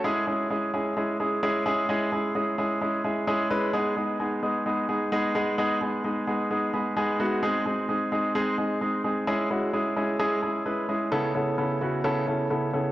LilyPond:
\new Staff \with { instrumentName = "Grand piano" } { \time 4/4 \key cis \minor \tempo 4 = 130 << { r1 | r2 r8 e''8 gis''4 | r1 | r2 r8 b''8 gis''8 e''8 |
r1 | r1 | r1 | } \\ { <gis cis' e' gis'>8 <gis cis' e' gis'>8 <gis cis' e' gis'>8 <gis cis' e' gis'>8 <gis cis' e' gis'>8 <gis cis' e' gis'>8 <gis cis' e' gis'>8 <gis cis' e' gis'>8 | <gis cis' e' gis'>8 <gis cis' e' gis'>8 <gis cis' e' gis'>8 <gis cis' e' gis'>8 <gis cis' e' gis'>8 <gis cis' e' gis'>8 <gis cis' e' gis'>8 <gis cis' e' b'>8 | <gis b dis' gis'>8 <gis b dis' gis'>8 <gis b dis' gis'>8 <gis b dis' gis'>8 <gis b dis' gis'>8 <gis b dis' gis'>8 <gis b dis' gis'>8 <gis b dis' gis'>8 | <gis b dis' gis'>8 <gis b dis' gis'>8 <gis b dis' gis'>8 <gis b dis' gis'>8 <gis b dis' gis'>8 <gis b dis' gis'>8 <gis b dis' gis'>8 <gis b dis' fis'>8 |
<gis bis dis' gis'>8 <gis bis dis' gis'>8 <gis bis dis' gis'>8 <gis bis dis' gis'>8 <gis bis dis' gis'>8 <gis bis dis' gis'>8 <gis bis dis' gis'>8 <gis bis dis' gis'>8 | <gis cis' e' gis'>8 <gis cis' e' fis'>8 <gis cis' e' gis'>8 <gis cis' e' gis'>8 <gis cis' e' gis'>8 <gis cis' e' gis'>8 <gis cis' e' b'>8 <gis cis' e' gis'>8 | <cis b cis' e' a'>8 <cis b cis' e' a'>8 <cis b cis' e' a'>8 <cis b cis' e' fis'>8 <cis b cis' e' a'>8 <cis b cis' e' a'>8 <cis b cis' e' a'>8 <cis b cis' e' a'>8 | } >> }